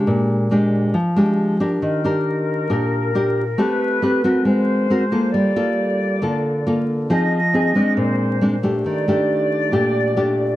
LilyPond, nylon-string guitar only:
\new Staff \with { instrumentName = "Nylon-string guitar" } { \time 4/4 \key bes \major \tempo 4 = 136 << { <aes d' g'>4 <aes d' g'>4 r8 <aes d' g'>4 <d' g' bes'>8~ | <d' g' bes'>8 <d' g' bes'>4. <d' g' bes'>4 <d' g' bes'>8 r8 | <c' g' b'>4 <c' g' b'>8 <c' ges' bes'>4. <c' ges' bes'>8 <bes f' a'>8~ | <bes f' a'>8 <bes f' a'>4. <bes f' a'>4 <bes f' a'>4 |
<c' ees' aes'>8 r8 <c' ees' aes'>8 <aes c' d'>4. <aes c' d'>8 <a d' g'>8~ | <a d' g'>8 <a d' g'>4. <a d' g'>4 <a d' g'>4 | } \\ { bes,2 f2 | ees2 bes,2 | a2 aes2 | g2 d2 |
f2 bes,2 | ees2 bes,2 | } >> }